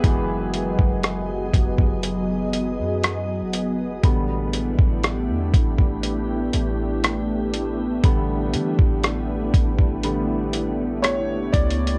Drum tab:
HH |x-----x-----x-----x-----x-----x-----x-----x-----|x-----x-----x-----x-----x-----x-----x-----x-----|x-----x-----x-----x-----x-----x-----x-----x-x-x-|
SD |------------r-----------------------r-----------|------------r-----------------------r-----------|------------r-----------------------r-----------|
BD |o--------o--------o--o--------------------------|o--------o--------o--o--------------------------|o--------o--------o--o--------------------o-----|